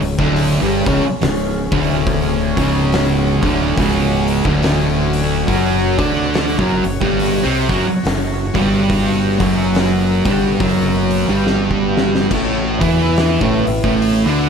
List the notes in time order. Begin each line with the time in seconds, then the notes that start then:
Already playing: C#4 G#4 C#5
0.01 C#1 C#2, open hi-hat
0.18 D1 D2 D3, kick
0.36 open hi-hat
0.61 G1 G2 G3
0.86 C#1 C#2 C#3, kick, open hi-hat
1.04 muted distorted electric guitar stroke
1.21 C#1 C#2, snare, open hi-hat
1.72 D1 D2 D3, kick, open hi-hat
2.06 F#4, kick, open hi-hat
2.56 C#1 C#2 C#3, kick, open hi-hat
2.92 snare, open hi-hat
3.42 D1 D2 D3, kick, open hi-hat
3.77 C#1 C#2 C#3, kick, open hi-hat
4.28 open hi-hat
4.44 D1 D2 D3, kick
4.63 snare, open hi-hat
5.13 open hi-hat
5.47 F#1 F#2 F#3 F#4 C#5, kick, open hi-hat
5.97 D2 D3 D4, kick, open hi-hat
6.34 snare, open hi-hat
6.59 F#1 F#2 F#3, kick
6.84 F#1 F#2, open hi-hat
7.01 G1 G2 G3, kick
7.19 open hi-hat
7.43 C2 C3 C4
7.69 F#1 F#2 F#3, kick, open hi-hat
7.87 muted distorted electric guitar stroke
8.04 F#1 F#2, snare, open hi-hat
8.54 G1 G2 G3, kick, open hi-hat
8.90 B3, kick, open hi-hat
9.39 F#1 F#2 F#3, kick, open hi-hat
9.75 snare, open hi-hat
10.25 G1 G2 G3, kick, open hi-hat
10.60 F#1 F#2 F#3, kick, open hi-hat
11.11 open hi-hat
11.28 G1 G2 G3
11.47 snare
11.71 kick
11.97 snare
12.15 snare
12.30 A1 A2 A3 E4 B4, kick, crash
12.80 E2 E3 E4, kick, open hi-hat
13.16 snare, open hi-hat
13.41 A1 A2 A3, kick
13.66 A1 A2, open hi-hat
13.84 A1 A2 A3, kick
14.02 open hi-hat
14.26 D2 D3 D4